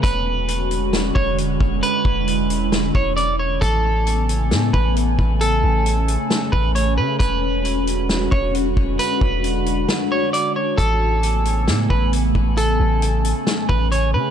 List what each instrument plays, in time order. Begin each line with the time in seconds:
0.03 808-style bass E1, ambient pad D3 G#3 C#4 F#4, clean electric guitar B4, kick, closed hi-hat
0.48 closed hi-hat
0.71 closed hi-hat
0.93 snare, closed hi-hat
1.15 808-style bass E1, clean electric guitar C#5, kick
1.38 closed hi-hat
1.61 808-style bass E1, kick
1.83 ambient pad E4, clean electric guitar B4, closed hi-hat
2.05 808-style bass E1, kick
2.28 closed hi-hat
2.50 closed hi-hat
2.72 snare, closed hi-hat
2.95 808-style bass E1, clean electric guitar C#5, kick
3.17 clean electric guitar D5, closed hi-hat
3.39 clean electric guitar C#5
3.61 808-style bass A1, ambient pad C#3 A3 B3 G#5, clean electric guitar A4, kick, closed hi-hat
4.07 closed hi-hat
4.29 closed hi-hat
4.51 808-style bass A2, snare, closed hi-hat
4.73 808-style bass A1, clean electric guitar B4, kick
4.97 closed hi-hat
5.19 808-style bass A1, kick
5.41 ambient pad C#4, clean electric guitar A4, closed hi-hat
5.63 808-style bass A1
5.86 closed hi-hat
6.08 closed hi-hat
6.30 snare, closed hi-hat
6.52 808-style bass A1, clean electric guitar B4, kick
6.75 clean electric guitar C#5, closed hi-hat
6.98 808-style bass C#3, clean electric guitar B4
7.19 808-style bass E1, ambient pad D3 G#3 F#4, clean electric guitar B4, kick, closed hi-hat
7.65 closed hi-hat
7.87 closed hi-hat
8.09 snare, closed hi-hat
8.31 808-style bass E1, clean electric guitar C#5, kick
8.55 closed hi-hat
8.77 808-style bass E1, kick
8.99 ambient pad D4, clean electric guitar B4, closed hi-hat
9.21 808-style bass E1, kick
9.44 closed hi-hat
9.66 closed hi-hat
9.89 snare, closed hi-hat
10.12 clean electric guitar C#5
10.33 clean electric guitar D5, closed hi-hat
10.56 clean electric guitar C#5
10.78 808-style bass A1, ambient pad C#3 A3 B3 G#5, clean electric guitar A4, kick, closed hi-hat
11.23 closed hi-hat
11.45 closed hi-hat
11.68 808-style bass A2, snare, closed hi-hat
11.90 808-style bass A1, clean electric guitar B4, kick
12.13 closed hi-hat
12.35 808-style bass A1, kick
12.57 ambient pad C#4, clean electric guitar A4, closed hi-hat
12.80 808-style bass A1
13.02 closed hi-hat
13.25 closed hi-hat
13.47 snare, closed hi-hat
13.69 808-style bass A1, clean electric guitar B4, kick
13.92 clean electric guitar C#5, closed hi-hat
14.14 808-style bass C#3, clean electric guitar B4